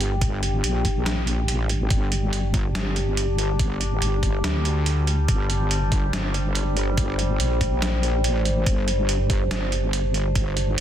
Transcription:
0.00 0.62 G1 loud
0.00 10.80 G3 medium
0.00 10.80 D4 medium
0.00 5.27 G4 medium
0.00 closed hi-hat medium
0.21 kick loud
0.21 closed hi-hat medium
0.43 closed hi-hat medium
0.64 1.52 A#1 medium
0.64 closed hi-hat medium
0.85 kick medium
0.85 closed hi-hat medium
1.06 snare loud
1.06 closed hi-hat medium
1.27 closed hi-hat medium
1.48 1.77 A1 medium
1.48 closed hi-hat medium
1.69 closed hi-hat medium
1.77 1.89 G#1 medium
1.90 2.74 G1 medium
1.90 kick loud
1.90 closed hi-hat medium
2.12 closed hi-hat medium
2.33 closed hi-hat medium
2.54 kick loud
2.54 closed hi-hat medium
2.75 4.00 G1 loud
2.75 snare loud
2.75 closed hi-hat medium
2.96 closed hi-hat medium
3.17 closed hi-hat medium
3.38 closed hi-hat medium
3.59 kick loud
3.59 closed hi-hat medium
3.81 closed hi-hat medium
4.02 4.43 G1 loud
4.02 closed hi-hat medium
4.23 kick medium
4.23 closed hi-hat medium
4.44 5.27 D2 loud
4.44 snare loud
4.44 closed hi-hat medium
4.65 closed hi-hat medium
4.86 closed hi-hat medium
5.07 closed hi-hat medium
5.28 6.12 G1 loud
5.28 10.80 C5 medium
5.28 kick loud
5.28 closed hi-hat medium
5.50 closed hi-hat medium
5.71 closed hi-hat medium
5.92 kick loud
5.92 closed hi-hat soft
6.13 7.39 G1 loud
6.13 snare loud
6.13 closed hi-hat medium
6.34 closed hi-hat soft
6.55 closed hi-hat medium
6.77 closed hi-hat medium
6.97 kick loud
6.97 closed hi-hat medium
7.19 closed hi-hat soft
7.40 8.28 A#1 loud
7.40 closed hi-hat medium
7.61 kick medium
7.61 closed hi-hat soft
7.82 snare loud
7.82 closed hi-hat medium
8.03 closed hi-hat soft
8.24 8.53 A1 loud
8.24 closed hi-hat medium
8.45 closed hi-hat soft
8.53 8.65 G#1 loud
8.66 9.50 G1 loud
8.66 kick loud
8.66 closed hi-hat medium
8.88 closed hi-hat medium
9.09 closed hi-hat medium
9.30 kick loud
9.30 closed hi-hat medium
9.51 10.76 G1 loud
9.51 snare loud
9.51 closed hi-hat medium
9.72 closed hi-hat medium
9.93 closed hi-hat medium
10.14 closed hi-hat soft
10.36 kick loud
10.36 closed hi-hat medium
10.57 closed hi-hat medium

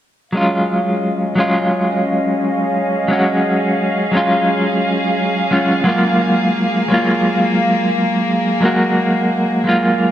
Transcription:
0.33 1.33 F#3 medium
0.33 1.34 G#3 medium
0.33 5.82 C#4 medium
0.33 1.35 C#4 medium
0.33 10.11 G#4 medium
0.33 5.82 D#5 medium
0.33 8.58 F5 medium
0.37 1.36 F4 medium
1.35 3.05 F#3 medium
1.35 3.06 G#3 medium
1.35 3.07 C#4 medium
1.40 3.08 F4 medium
3.08 4.09 F#3 medium
3.08 4.10 G#3 medium
3.08 4.11 C#4 medium
3.13 4.11 F#4 medium
4.11 5.47 F#3 medium
4.11 5.48 G#3 medium
4.11 5.48 C#4 medium
4.17 5.49 F4 medium
5.51 5.82 F#3 medium
5.51 5.82 G#3 medium
5.51 5.83 C#4 medium
5.51 5.83 F4 medium
5.84 6.85 F#3 medium
5.84 6.85 G#3 medium
5.84 10.11 A#3 medium
5.84 6.86 A#3 medium
5.89 6.87 F4 medium
6.88 8.58 F#3 medium
6.88 8.58 G#3 medium
6.88 8.59 A#3 medium
6.93 8.60 F4 medium
8.60 9.61 F#3 medium
8.60 9.62 G#3 medium
8.60 9.62 A#3 medium
8.65 9.63 F#4 medium
9.64 10.11 F#3 medium
9.64 10.11 G#3 medium
9.64 10.11 A#3 medium
9.69 10.11 F4 medium

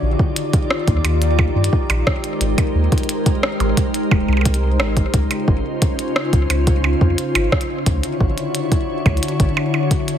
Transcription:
0.00 0.15 A#1 medium
0.00 2.04 D#3 medium
0.00 7.82 D#4 medium
0.00 2.05 F4 medium
0.00 5.10 G4 medium
0.00 2.04 D5 loud
0.19 kick loud
0.36 closed hi-hat medium
0.53 kick loud
0.53 closed hi-hat medium
0.70 cross-stick loud
0.88 1.01 D#2 loud
0.88 kick loud
0.88 closed hi-hat soft
1.05 1.49 D#2 medium
1.05 closed hi-hat medium
1.05 percussion blips soft
1.22 closed hi-hat medium
1.39 kick loud
1.39 percussion blips soft
1.56 1.69 G2 loud
1.64 closed hi-hat medium
1.73 kick loud
1.90 2.03 A#1 medium
1.90 closed hi-hat medium
1.90 percussion blips medium
2.07 5.11 G#3 medium
2.07 5.11 A#4 medium
2.07 5.11 C5 medium
2.07 kick loud
2.07 cross-stick loud
2.24 closed hi-hat soft
2.41 2.54 G#1 loud
2.41 closed hi-hat medium
2.58 kick loud
2.58 closed hi-hat medium
2.58 percussion blips soft
2.75 2.88 D#2 medium
2.92 kick loud
2.92 closed hi-hat soft
2.98 closed hi-hat soft
3.03 closed hi-hat soft
3.09 closed hi-hat medium
3.26 kick loud
3.26 closed hi-hat soft
3.43 cross-stick loud
3.60 3.73 G#1 loud
3.60 closed hi-hat soft
3.60 percussion blips soft
3.77 kick loud
3.77 closed hi-hat medium
3.94 closed hi-hat soft
4.11 4.24 D#1 medium
4.11 kick loud
4.11 percussion blips soft
4.28 4.81 C2 loud
4.28 percussion blips soft
4.33 percussion blips soft
4.37 percussion blips soft
4.41 percussion blips soft
4.45 kick loud
4.45 closed hi-hat medium
4.54 closed hi-hat medium
4.80 5.06 G#1 medium
4.80 cross-stick loud
4.80 percussion blips soft
4.97 kick loud
4.97 closed hi-hat soft
5.14 5.27 C#2 medium
5.14 7.84 C#3 medium
5.14 7.84 C#4 medium
5.14 7.84 F4 medium
5.14 7.84 C5 medium
5.14 kick loud
5.14 closed hi-hat medium
5.31 closed hi-hat soft
5.31 percussion blips soft
5.48 5.61 G#1 medium
5.48 kick loud
5.82 kick loud
5.82 closed hi-hat medium
5.99 closed hi-hat soft
6.16 cross-stick loud
6.33 6.46 C#2 loud
6.33 kick loud
6.33 closed hi-hat soft
6.50 6.95 C#2 medium
6.50 closed hi-hat medium
6.50 percussion blips soft
6.67 kick loud
6.67 closed hi-hat soft
6.84 percussion blips medium
7.01 7.14 F2 loud
7.01 kick loud
7.18 closed hi-hat medium
7.35 7.48 G#1 medium
7.35 closed hi-hat soft
7.35 percussion blips medium
7.52 kick loud
7.52 cross-stick loud
7.61 closed hi-hat soft
7.86 7.99 D2 medium
7.86 10.18 D3 medium
7.86 10.18 D4 medium
7.86 10.18 E4 medium
7.86 10.18 F#4 medium
7.86 10.18 C#5 medium
7.86 kick loud
7.86 closed hi-hat medium
8.03 closed hi-hat soft
8.20 8.33 A1 medium
8.20 kick loud
8.38 closed hi-hat soft
8.55 closed hi-hat medium
8.72 kick loud
8.72 closed hi-hat soft
9.06 9.19 D2 loud
9.06 kick loud
9.06 closed hi-hat soft
9.06 percussion blips soft
9.17 closed hi-hat soft
9.23 closed hi-hat medium
9.28 closed hi-hat soft
9.40 9.53 A1 medium
9.40 kick loud
9.40 closed hi-hat soft
9.57 percussion blips soft
9.74 percussion blips soft
9.91 kick loud
9.91 closed hi-hat medium
10.08 closed hi-hat soft

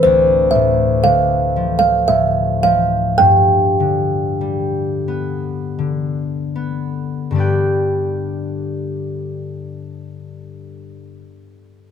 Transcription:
0.00 1.09 C4 soft
0.00 1.62 E4 soft
0.00 0.54 C5 medium
0.04 3.23 D2 medium
0.51 1.03 E5 medium
0.55 1.08 A2 soft
1.04 2.11 D3 soft
1.04 1.78 F5 medium
1.56 2.62 F3 soft
1.79 2.07 F5 medium
2.08 3.23 A2 soft
2.08 2.63 E5 medium
2.63 3.23 F3 soft
2.63 3.21 F5 medium
3.18 7.08 G2 soft
3.18 5.73 G5 medium
3.80 5.77 D3 soft
4.41 5.83 G3 soft
5.08 6.55 B3 soft
5.79 7.31 D3 soft
6.56 9.66 B3 soft
7.31 11.21 G2 soft
7.31 11.22 D3 soft
7.31 10.91 G3 soft
7.36 10.91 D4 soft
7.36 10.93 B4 soft
7.40 10.95 G5 soft

